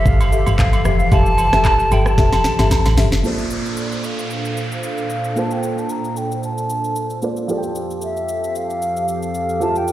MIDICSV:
0, 0, Header, 1, 8, 480
1, 0, Start_track
1, 0, Tempo, 530973
1, 1011, Time_signature, 4, 2, 24, 8
1, 8969, End_track
2, 0, Start_track
2, 0, Title_t, "Flute"
2, 0, Program_c, 0, 73
2, 66, Note_on_c, 0, 77, 98
2, 538, Note_off_c, 0, 77, 0
2, 544, Note_on_c, 0, 77, 105
2, 1022, Note_on_c, 0, 81, 127
2, 1036, Note_off_c, 0, 77, 0
2, 1743, Note_on_c, 0, 79, 104
2, 1757, Note_off_c, 0, 81, 0
2, 1876, Note_on_c, 0, 81, 102
2, 1890, Note_off_c, 0, 79, 0
2, 2697, Note_off_c, 0, 81, 0
2, 3426, Note_on_c, 0, 74, 81
2, 3667, Note_on_c, 0, 77, 91
2, 3680, Note_off_c, 0, 74, 0
2, 4378, Note_off_c, 0, 77, 0
2, 4385, Note_on_c, 0, 77, 97
2, 4865, Note_on_c, 0, 81, 110
2, 4878, Note_off_c, 0, 77, 0
2, 4996, Note_on_c, 0, 79, 97
2, 5010, Note_off_c, 0, 81, 0
2, 5235, Note_on_c, 0, 81, 101
2, 5249, Note_off_c, 0, 79, 0
2, 5344, Note_on_c, 0, 82, 110
2, 5358, Note_off_c, 0, 81, 0
2, 5583, Note_on_c, 0, 79, 96
2, 5597, Note_off_c, 0, 82, 0
2, 5817, Note_off_c, 0, 79, 0
2, 5822, Note_on_c, 0, 81, 94
2, 6500, Note_off_c, 0, 81, 0
2, 7265, Note_on_c, 0, 76, 88
2, 7742, Note_on_c, 0, 77, 91
2, 7755, Note_off_c, 0, 76, 0
2, 8216, Note_off_c, 0, 77, 0
2, 8223, Note_on_c, 0, 77, 93
2, 8703, Note_on_c, 0, 81, 102
2, 8716, Note_off_c, 0, 77, 0
2, 8836, Note_on_c, 0, 79, 92
2, 8849, Note_off_c, 0, 81, 0
2, 8969, Note_off_c, 0, 79, 0
2, 8969, End_track
3, 0, Start_track
3, 0, Title_t, "Grand piano"
3, 0, Program_c, 1, 0
3, 2921, Note_on_c, 1, 58, 76
3, 2928, Note_on_c, 1, 65, 70
3, 2937, Note_on_c, 1, 69, 67
3, 2945, Note_on_c, 1, 72, 69
3, 2953, Note_on_c, 1, 74, 84
3, 3124, Control_c, 1, 64, 127
3, 4809, Note_off_c, 1, 58, 0
3, 4813, Note_off_c, 1, 65, 0
3, 4818, Note_off_c, 1, 69, 0
3, 4822, Note_off_c, 1, 72, 0
3, 4825, Note_off_c, 1, 74, 0
3, 4841, Note_on_c, 1, 58, 61
3, 4849, Note_on_c, 1, 65, 57
3, 4857, Note_on_c, 1, 69, 57
3, 4864, Note_on_c, 1, 72, 59
3, 4873, Note_on_c, 1, 77, 71
3, 6492, Note_off_c, 1, 58, 0
3, 6496, Note_off_c, 1, 65, 0
3, 6500, Note_off_c, 1, 69, 0
3, 6504, Note_off_c, 1, 72, 0
3, 6508, Note_off_c, 1, 77, 0
3, 6527, Note_on_c, 1, 58, 57
3, 6532, Note_on_c, 1, 65, 55
3, 6536, Note_on_c, 1, 69, 52
3, 6540, Note_on_c, 1, 72, 54
3, 6544, Note_on_c, 1, 74, 63
3, 6755, Note_off_c, 1, 65, 0
3, 6761, Note_on_c, 1, 53, 76
3, 6768, Note_on_c, 1, 65, 70
3, 6769, Note_off_c, 1, 58, 0
3, 6770, Note_off_c, 1, 69, 0
3, 6775, Note_off_c, 1, 72, 0
3, 6776, Note_on_c, 1, 67, 71
3, 6777, Note_off_c, 1, 74, 0
3, 6782, Control_c, 1, 64, 0
3, 6784, Note_on_c, 1, 69, 72
3, 6792, Note_on_c, 1, 74, 69
3, 6845, Note_off_c, 1, 74, 0
3, 6850, Note_on_c, 1, 79, 86
3, 6924, Control_c, 1, 64, 127
3, 8649, Note_off_c, 1, 53, 0
3, 8653, Note_off_c, 1, 65, 0
3, 8657, Note_off_c, 1, 67, 0
3, 8661, Note_off_c, 1, 69, 0
3, 8681, Note_on_c, 1, 53, 65
3, 8689, Note_on_c, 1, 65, 58
3, 8694, Note_off_c, 1, 79, 0
3, 8696, Note_on_c, 1, 67, 59
3, 8704, Note_on_c, 1, 69, 57
3, 8712, Note_on_c, 1, 76, 57
3, 8765, Note_off_c, 1, 76, 0
3, 8770, Note_on_c, 1, 77, 70
3, 8969, Note_off_c, 1, 53, 0
3, 8969, Note_off_c, 1, 65, 0
3, 8969, Note_off_c, 1, 67, 0
3, 8969, Note_off_c, 1, 69, 0
3, 8969, Note_off_c, 1, 77, 0
3, 8969, End_track
4, 0, Start_track
4, 0, Title_t, "Marimba"
4, 0, Program_c, 2, 12
4, 287, Note_on_c, 2, 67, 78
4, 290, Note_on_c, 2, 69, 73
4, 293, Note_on_c, 2, 76, 93
4, 417, Note_off_c, 2, 67, 0
4, 418, Note_off_c, 2, 69, 0
4, 420, Note_off_c, 2, 76, 0
4, 768, Note_on_c, 2, 67, 81
4, 771, Note_on_c, 2, 69, 71
4, 773, Note_on_c, 2, 76, 87
4, 897, Note_off_c, 2, 67, 0
4, 898, Note_off_c, 2, 69, 0
4, 900, Note_off_c, 2, 76, 0
4, 1007, Note_on_c, 2, 67, 97
4, 1010, Note_on_c, 2, 69, 88
4, 1013, Note_on_c, 2, 76, 106
4, 1137, Note_off_c, 2, 67, 0
4, 1138, Note_off_c, 2, 69, 0
4, 1139, Note_off_c, 2, 76, 0
4, 1380, Note_on_c, 2, 67, 76
4, 1383, Note_on_c, 2, 69, 74
4, 1385, Note_on_c, 2, 76, 89
4, 1703, Note_off_c, 2, 67, 0
4, 1705, Note_off_c, 2, 69, 0
4, 1706, Note_off_c, 2, 76, 0
4, 1728, Note_on_c, 2, 67, 79
4, 1731, Note_on_c, 2, 69, 75
4, 1734, Note_on_c, 2, 76, 84
4, 1952, Note_off_c, 2, 67, 0
4, 1953, Note_off_c, 2, 69, 0
4, 1955, Note_off_c, 2, 76, 0
4, 1968, Note_on_c, 2, 67, 94
4, 1971, Note_on_c, 2, 69, 91
4, 1974, Note_on_c, 2, 76, 108
4, 2309, Note_off_c, 2, 67, 0
4, 2311, Note_off_c, 2, 69, 0
4, 2312, Note_off_c, 2, 76, 0
4, 2340, Note_on_c, 2, 67, 82
4, 2342, Note_on_c, 2, 69, 73
4, 2345, Note_on_c, 2, 76, 86
4, 2663, Note_off_c, 2, 67, 0
4, 2664, Note_off_c, 2, 69, 0
4, 2666, Note_off_c, 2, 76, 0
4, 2688, Note_on_c, 2, 67, 76
4, 2691, Note_on_c, 2, 69, 69
4, 2694, Note_on_c, 2, 76, 88
4, 2912, Note_off_c, 2, 67, 0
4, 2914, Note_off_c, 2, 69, 0
4, 2915, Note_off_c, 2, 76, 0
4, 8969, End_track
5, 0, Start_track
5, 0, Title_t, "Analog synth pad"
5, 0, Program_c, 3, 89
5, 0, Note_on_c, 3, 52, 76
5, 0, Note_on_c, 3, 53, 88
5, 0, Note_on_c, 3, 67, 77
5, 0, Note_on_c, 3, 69, 96
5, 2894, Note_off_c, 3, 53, 0
5, 2894, Note_off_c, 3, 67, 0
5, 2894, Note_off_c, 3, 69, 0
5, 2895, Note_off_c, 3, 52, 0
5, 2930, Note_on_c, 3, 46, 81
5, 2930, Note_on_c, 3, 72, 85
5, 2931, Note_on_c, 3, 62, 75
5, 2931, Note_on_c, 3, 69, 73
5, 6734, Note_off_c, 3, 46, 0
5, 6734, Note_off_c, 3, 62, 0
5, 6734, Note_off_c, 3, 69, 0
5, 6734, Note_off_c, 3, 72, 0
5, 6769, Note_on_c, 3, 41, 83
5, 6769, Note_on_c, 3, 53, 77
5, 6769, Note_on_c, 3, 67, 72
5, 6770, Note_on_c, 3, 69, 85
5, 8969, Note_off_c, 3, 41, 0
5, 8969, Note_off_c, 3, 53, 0
5, 8969, Note_off_c, 3, 67, 0
5, 8969, Note_off_c, 3, 69, 0
5, 8969, End_track
6, 0, Start_track
6, 0, Title_t, "Log drum bass"
6, 0, Program_c, 4, 39
6, 51, Note_on_c, 4, 31, 101
6, 401, Note_off_c, 4, 31, 0
6, 423, Note_on_c, 4, 31, 99
6, 525, Note_off_c, 4, 31, 0
6, 532, Note_on_c, 4, 31, 95
6, 757, Note_off_c, 4, 31, 0
6, 770, Note_on_c, 4, 29, 89
6, 996, Note_off_c, 4, 29, 0
6, 1011, Note_on_c, 4, 29, 114
6, 1361, Note_off_c, 4, 29, 0
6, 1384, Note_on_c, 4, 29, 93
6, 1711, Note_off_c, 4, 29, 0
6, 1732, Note_on_c, 4, 31, 94
6, 1957, Note_off_c, 4, 31, 0
6, 1970, Note_on_c, 4, 29, 104
6, 2095, Note_off_c, 4, 29, 0
6, 2104, Note_on_c, 4, 29, 95
6, 2205, Note_off_c, 4, 29, 0
6, 2344, Note_on_c, 4, 31, 100
6, 2445, Note_off_c, 4, 31, 0
6, 2583, Note_on_c, 4, 33, 98
6, 2685, Note_off_c, 4, 33, 0
6, 2689, Note_on_c, 4, 31, 97
6, 2814, Note_off_c, 4, 31, 0
6, 2822, Note_on_c, 4, 29, 85
6, 2924, Note_off_c, 4, 29, 0
6, 8969, End_track
7, 0, Start_track
7, 0, Title_t, "Downlifter"
7, 0, Program_c, 5, 103
7, 2930, Note_on_c, 5, 60, 78
7, 6770, Note_off_c, 5, 60, 0
7, 8969, End_track
8, 0, Start_track
8, 0, Title_t, "Drums"
8, 51, Note_on_c, 9, 36, 127
8, 52, Note_on_c, 9, 82, 74
8, 142, Note_off_c, 9, 36, 0
8, 142, Note_off_c, 9, 82, 0
8, 186, Note_on_c, 9, 67, 75
8, 186, Note_on_c, 9, 82, 61
8, 276, Note_off_c, 9, 82, 0
8, 277, Note_off_c, 9, 67, 0
8, 294, Note_on_c, 9, 82, 98
8, 384, Note_off_c, 9, 82, 0
8, 420, Note_on_c, 9, 67, 85
8, 425, Note_on_c, 9, 82, 62
8, 510, Note_off_c, 9, 67, 0
8, 515, Note_off_c, 9, 82, 0
8, 529, Note_on_c, 9, 82, 104
8, 531, Note_on_c, 9, 36, 113
8, 533, Note_on_c, 9, 39, 95
8, 620, Note_off_c, 9, 82, 0
8, 622, Note_off_c, 9, 36, 0
8, 623, Note_off_c, 9, 39, 0
8, 659, Note_on_c, 9, 82, 59
8, 661, Note_on_c, 9, 67, 73
8, 749, Note_off_c, 9, 82, 0
8, 751, Note_off_c, 9, 67, 0
8, 768, Note_on_c, 9, 82, 76
8, 771, Note_on_c, 9, 37, 95
8, 859, Note_off_c, 9, 82, 0
8, 862, Note_off_c, 9, 37, 0
8, 900, Note_on_c, 9, 82, 57
8, 990, Note_off_c, 9, 82, 0
8, 1009, Note_on_c, 9, 82, 77
8, 1011, Note_on_c, 9, 36, 120
8, 1013, Note_on_c, 9, 67, 74
8, 1100, Note_off_c, 9, 82, 0
8, 1101, Note_off_c, 9, 36, 0
8, 1104, Note_off_c, 9, 67, 0
8, 1139, Note_on_c, 9, 82, 56
8, 1229, Note_off_c, 9, 82, 0
8, 1248, Note_on_c, 9, 67, 74
8, 1250, Note_on_c, 9, 82, 106
8, 1338, Note_off_c, 9, 67, 0
8, 1340, Note_off_c, 9, 82, 0
8, 1383, Note_on_c, 9, 37, 92
8, 1383, Note_on_c, 9, 38, 69
8, 1387, Note_on_c, 9, 82, 53
8, 1473, Note_off_c, 9, 37, 0
8, 1473, Note_off_c, 9, 38, 0
8, 1477, Note_off_c, 9, 82, 0
8, 1486, Note_on_c, 9, 82, 93
8, 1489, Note_on_c, 9, 39, 88
8, 1491, Note_on_c, 9, 36, 92
8, 1496, Note_on_c, 9, 67, 74
8, 1496, Note_on_c, 9, 77, 74
8, 1576, Note_off_c, 9, 82, 0
8, 1580, Note_off_c, 9, 39, 0
8, 1581, Note_off_c, 9, 36, 0
8, 1586, Note_off_c, 9, 67, 0
8, 1586, Note_off_c, 9, 77, 0
8, 1622, Note_on_c, 9, 82, 57
8, 1712, Note_off_c, 9, 82, 0
8, 1730, Note_on_c, 9, 82, 88
8, 1733, Note_on_c, 9, 67, 87
8, 1821, Note_off_c, 9, 82, 0
8, 1824, Note_off_c, 9, 67, 0
8, 1861, Note_on_c, 9, 37, 97
8, 1867, Note_on_c, 9, 82, 57
8, 1951, Note_off_c, 9, 37, 0
8, 1958, Note_off_c, 9, 82, 0
8, 1970, Note_on_c, 9, 38, 64
8, 1971, Note_on_c, 9, 36, 118
8, 1972, Note_on_c, 9, 82, 72
8, 2060, Note_off_c, 9, 38, 0
8, 2061, Note_off_c, 9, 36, 0
8, 2062, Note_off_c, 9, 82, 0
8, 2102, Note_on_c, 9, 38, 60
8, 2105, Note_on_c, 9, 67, 77
8, 2105, Note_on_c, 9, 82, 60
8, 2193, Note_off_c, 9, 38, 0
8, 2195, Note_off_c, 9, 67, 0
8, 2196, Note_off_c, 9, 82, 0
8, 2209, Note_on_c, 9, 38, 79
8, 2212, Note_on_c, 9, 82, 97
8, 2299, Note_off_c, 9, 38, 0
8, 2302, Note_off_c, 9, 82, 0
8, 2340, Note_on_c, 9, 67, 85
8, 2343, Note_on_c, 9, 38, 76
8, 2345, Note_on_c, 9, 82, 60
8, 2430, Note_off_c, 9, 67, 0
8, 2433, Note_off_c, 9, 38, 0
8, 2436, Note_off_c, 9, 82, 0
8, 2449, Note_on_c, 9, 82, 102
8, 2451, Note_on_c, 9, 36, 110
8, 2451, Note_on_c, 9, 38, 101
8, 2455, Note_on_c, 9, 77, 65
8, 2540, Note_off_c, 9, 82, 0
8, 2541, Note_off_c, 9, 38, 0
8, 2542, Note_off_c, 9, 36, 0
8, 2545, Note_off_c, 9, 77, 0
8, 2579, Note_on_c, 9, 82, 63
8, 2581, Note_on_c, 9, 67, 71
8, 2583, Note_on_c, 9, 38, 81
8, 2670, Note_off_c, 9, 82, 0
8, 2671, Note_off_c, 9, 67, 0
8, 2673, Note_off_c, 9, 38, 0
8, 2688, Note_on_c, 9, 46, 65
8, 2688, Note_on_c, 9, 82, 76
8, 2690, Note_on_c, 9, 38, 108
8, 2779, Note_off_c, 9, 46, 0
8, 2779, Note_off_c, 9, 82, 0
8, 2781, Note_off_c, 9, 38, 0
8, 2820, Note_on_c, 9, 82, 55
8, 2822, Note_on_c, 9, 38, 99
8, 2910, Note_off_c, 9, 82, 0
8, 2913, Note_off_c, 9, 38, 0
8, 2930, Note_on_c, 9, 82, 67
8, 3021, Note_off_c, 9, 82, 0
8, 3058, Note_on_c, 9, 82, 52
8, 3149, Note_off_c, 9, 82, 0
8, 3169, Note_on_c, 9, 82, 100
8, 3259, Note_off_c, 9, 82, 0
8, 3307, Note_on_c, 9, 82, 47
8, 3398, Note_off_c, 9, 82, 0
8, 3407, Note_on_c, 9, 82, 86
8, 3497, Note_off_c, 9, 82, 0
8, 3543, Note_on_c, 9, 82, 48
8, 3633, Note_off_c, 9, 82, 0
8, 3650, Note_on_c, 9, 82, 82
8, 3741, Note_off_c, 9, 82, 0
8, 3787, Note_on_c, 9, 82, 54
8, 3877, Note_off_c, 9, 82, 0
8, 3891, Note_on_c, 9, 82, 62
8, 3981, Note_off_c, 9, 82, 0
8, 4024, Note_on_c, 9, 82, 55
8, 4114, Note_off_c, 9, 82, 0
8, 4133, Note_on_c, 9, 82, 88
8, 4223, Note_off_c, 9, 82, 0
8, 4265, Note_on_c, 9, 82, 53
8, 4355, Note_off_c, 9, 82, 0
8, 4369, Note_on_c, 9, 82, 92
8, 4459, Note_off_c, 9, 82, 0
8, 4499, Note_on_c, 9, 82, 53
8, 4589, Note_off_c, 9, 82, 0
8, 4608, Note_on_c, 9, 82, 71
8, 4698, Note_off_c, 9, 82, 0
8, 4739, Note_on_c, 9, 82, 51
8, 4830, Note_off_c, 9, 82, 0
8, 4850, Note_on_c, 9, 82, 72
8, 4941, Note_off_c, 9, 82, 0
8, 4978, Note_on_c, 9, 82, 52
8, 5069, Note_off_c, 9, 82, 0
8, 5090, Note_on_c, 9, 82, 93
8, 5180, Note_off_c, 9, 82, 0
8, 5227, Note_on_c, 9, 82, 48
8, 5317, Note_off_c, 9, 82, 0
8, 5327, Note_on_c, 9, 82, 81
8, 5417, Note_off_c, 9, 82, 0
8, 5464, Note_on_c, 9, 82, 49
8, 5554, Note_off_c, 9, 82, 0
8, 5573, Note_on_c, 9, 82, 83
8, 5663, Note_off_c, 9, 82, 0
8, 5709, Note_on_c, 9, 82, 52
8, 5799, Note_off_c, 9, 82, 0
8, 5814, Note_on_c, 9, 82, 65
8, 5904, Note_off_c, 9, 82, 0
8, 5946, Note_on_c, 9, 82, 54
8, 6036, Note_off_c, 9, 82, 0
8, 6054, Note_on_c, 9, 82, 86
8, 6144, Note_off_c, 9, 82, 0
8, 6185, Note_on_c, 9, 82, 54
8, 6275, Note_off_c, 9, 82, 0
8, 6289, Note_on_c, 9, 82, 91
8, 6380, Note_off_c, 9, 82, 0
8, 6419, Note_on_c, 9, 82, 55
8, 6509, Note_off_c, 9, 82, 0
8, 6527, Note_on_c, 9, 82, 68
8, 6618, Note_off_c, 9, 82, 0
8, 6658, Note_on_c, 9, 82, 51
8, 6748, Note_off_c, 9, 82, 0
8, 6769, Note_on_c, 9, 82, 70
8, 6860, Note_off_c, 9, 82, 0
8, 6897, Note_on_c, 9, 82, 52
8, 6988, Note_off_c, 9, 82, 0
8, 7010, Note_on_c, 9, 82, 96
8, 7100, Note_off_c, 9, 82, 0
8, 7146, Note_on_c, 9, 82, 50
8, 7237, Note_off_c, 9, 82, 0
8, 7245, Note_on_c, 9, 82, 81
8, 7336, Note_off_c, 9, 82, 0
8, 7382, Note_on_c, 9, 82, 48
8, 7473, Note_off_c, 9, 82, 0
8, 7490, Note_on_c, 9, 82, 80
8, 7580, Note_off_c, 9, 82, 0
8, 7628, Note_on_c, 9, 82, 53
8, 7718, Note_off_c, 9, 82, 0
8, 7732, Note_on_c, 9, 82, 66
8, 7823, Note_off_c, 9, 82, 0
8, 7866, Note_on_c, 9, 82, 55
8, 7956, Note_off_c, 9, 82, 0
8, 7973, Note_on_c, 9, 82, 87
8, 8064, Note_off_c, 9, 82, 0
8, 8105, Note_on_c, 9, 82, 55
8, 8195, Note_off_c, 9, 82, 0
8, 8209, Note_on_c, 9, 82, 91
8, 8300, Note_off_c, 9, 82, 0
8, 8339, Note_on_c, 9, 82, 53
8, 8430, Note_off_c, 9, 82, 0
8, 8448, Note_on_c, 9, 82, 69
8, 8539, Note_off_c, 9, 82, 0
8, 8580, Note_on_c, 9, 82, 50
8, 8670, Note_off_c, 9, 82, 0
8, 8690, Note_on_c, 9, 82, 69
8, 8780, Note_off_c, 9, 82, 0
8, 8819, Note_on_c, 9, 82, 51
8, 8909, Note_off_c, 9, 82, 0
8, 8930, Note_on_c, 9, 82, 96
8, 8969, Note_off_c, 9, 82, 0
8, 8969, End_track
0, 0, End_of_file